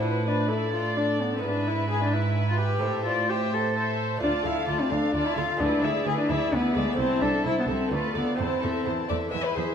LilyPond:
<<
  \new Staff \with { instrumentName = "Violin section" } { \time 3/4 \key a \minor \tempo 4 = 130 d''2. | e''2. | e''4 e''4 e''4 | a''8 f''8 a''8 f''8 a''8 f''8 |
d''8 e''8 d''8 e''8 d''8 e''8 | a''8 e''8 a''8 e''8 d''8 f''8 | a''8 e''8 a''8 e''8 gis''8 e''8 | }
  \new Staff \with { instrumentName = "Violin section" } { \time 3/4 \key a \minor c''4 d''2 | b'2 b'4 | c''4 c''4 a'4 | d''8 f''8 d''8 f''8 d''8 f''8 |
b'8 d''8 b'8 d''8 b'8 d''8 | c''8 a'8 c''8 a'8 b'8 d''8 | c''8 a'8 c''8 d''8 e''16 b'16 c''8 | }
  \new Staff \with { instrumentName = "Viola section" } { \time 3/4 \key a \minor b'8 b'8 a'4 a'4 | b'4 b'2 | a'8 d''8 c''4 c''4 | f'8 a'8 f'8 a'8 f'8 a'8 |
e'8 gis'8 e'8 gis'8 e'8 gis'8 | e'8 a'8 e'8 a'8 f'8 a'8 | e'8 a'8 e'8 a'8 e'8 gis'8 | }
  \new Staff \with { instrumentName = "Cello" } { \time 3/4 \key a \minor e'8 d'8 e'8 f'8 d'8 b16 c'16 | d'8 e'8 gis'16 d'16 e'8. f'16 g'8~ | g'8 f'8 g'8 a'8 r4 | d'8 e'8 f'16 c'16 d'8. e'16 f'8 |
d'8 e'8 gis'16 d'16 e'8 b8 gis16 b16 | c'8 d'8 e'16 b16 c'8 a8 b8 | c'2 r4 | }
  \new Staff \with { instrumentName = "Lute" } { \time 3/4 \key a \minor <b d' f'>2. | <b e'>2. | <a c' e'>2. | <a d' f'>2. |
<gis b e'>2. | <a c' e'>2 <a b f'>4 | <a c' e'>2 <gis b e'>4 | }
  \new Staff \with { instrumentName = "Lute" } { \clef bass \time 3/4 \key a \minor a,2. | gis,2. | a,2. | d,8 d,8 d,8 d,8 d,8 d,8 |
d,8 d,8 d,8 d,8 d,8 d,8 | r2 d,8 d,8 | e,8 e,8 e,8 e,8 e,8 e,8 | }
  \new Staff \with { instrumentName = "Cello section" } { \clef bass \time 3/4 \key a \minor a,2. | gis,2. | a,2. | d,8 d,8 d,8 d,8 d,8 d,8 |
d,8 d,8 d,8 d,8 d,8 d,8 | c,8 c,8 c,8 c,8 d,8 d,8 | e,8 e,8 e,8 e,8 e,8 e,8 | }
>>